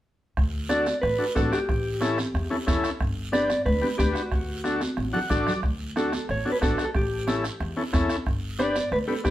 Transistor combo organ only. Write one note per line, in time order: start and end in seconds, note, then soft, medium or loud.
0.69 0.87 D4 medium
0.69 0.87 F#4 medium
0.69 0.87 A4 medium
1.18 1.25 D4 medium
1.18 1.25 F#4 soft
1.18 1.25 A4 medium
1.35 1.58 D4 medium
1.35 1.59 F#4 medium
1.35 1.59 A4 medium
2.01 2.18 C#4 medium
2.01 2.19 E4 medium
2.01 2.19 A4 medium
2.50 2.56 C#4 medium
2.50 2.57 E4 medium
2.50 2.57 A4 medium
2.67 2.90 C#4 medium
2.67 2.90 E4 medium
2.67 2.90 A4 medium
3.32 3.50 D4 medium
3.32 3.50 G4 medium
3.32 3.50 B4 medium
3.82 3.88 D4 medium
3.82 3.88 G4 medium
3.82 3.88 B4 medium
3.98 4.22 D4 medium
3.98 4.22 G4 medium
3.98 4.22 B4 medium
4.64 4.82 D4 medium
4.64 4.82 F#4 medium
4.64 4.82 A4 medium
5.13 5.19 D4 medium
5.13 5.19 F#4 medium
5.13 5.20 A4 medium
5.13 5.29 F#5 medium
5.30 5.53 D4 medium
5.30 5.53 F#4 medium
5.30 5.53 A4 medium
5.30 5.61 D5 medium
5.96 6.13 D4 medium
5.96 6.14 F#4 medium
5.96 6.14 A4 medium
6.45 6.51 D4 medium
6.45 6.51 F#4 medium
6.45 6.52 A4 medium
6.61 6.85 D4 medium
6.61 6.85 F#4 medium
6.61 6.85 A4 medium
7.27 7.45 C#4 medium
7.27 7.45 E4 medium
7.27 7.45 A4 medium
7.77 7.82 C#4 medium
7.77 7.83 E4 medium
7.77 7.83 A4 medium
7.93 8.16 C#4 medium
7.93 8.16 E4 medium
7.93 8.16 A4 medium
8.59 8.76 D4 medium
8.59 8.76 G4 medium
8.59 8.76 B4 medium
9.08 9.14 D4 medium
9.08 9.14 G4 soft
9.08 9.14 B4 medium
9.24 9.30 D4 medium
9.24 9.30 G4 medium
9.24 9.30 B4 medium